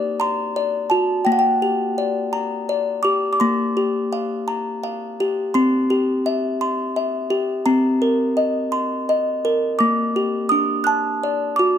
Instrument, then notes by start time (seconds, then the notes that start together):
music box
Already playing: A#3 G4 D5 D6
0.20 A#5 C6
0.56 D5
0.90 F#4 A5
1.25 A#3 G5
1.32 F#5
1.39 G5
1.62 G4
1.98 D5
2.33 A#5
2.69 D5
3.03 G4 D6
3.33 D6
3.40 A#3 C6
3.77 G4
4.13 F5
4.48 A#5
4.83 F5
5.20 G4
5.54 C4 C6
5.90 G4
6.26 E5
6.61 C6
6.96 E5
7.30 G4
7.66 C4 A#5
8.02 A#4
8.37 D#5
8.72 C6
9.09 D#5
9.45 A#4
9.79 A#3 D6
10.16 G4
10.49 D4 D#6
10.84 A5 F#6
11.23 D5
11.56 F#4 D6